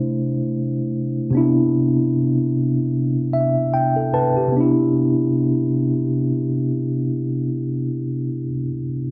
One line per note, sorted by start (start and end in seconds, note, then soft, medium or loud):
0.00 1.28 C3 medium
0.00 1.29 A3 medium
0.00 1.30 D4 medium
0.00 1.31 E4 medium
1.30 4.47 C3 medium
1.30 4.49 B3 medium
1.35 4.50 D4 medium
1.35 4.51 E4 medium
3.33 3.70 E5 medium
3.74 4.11 G5 medium
3.96 4.13 A4 soft
4.14 4.35 B4 medium
4.14 4.51 A5 medium
4.37 4.74 G4 soft
4.48 8.43 C3 medium
4.52 8.47 B3 medium
4.57 8.51 D4 medium
4.57 8.55 E4 medium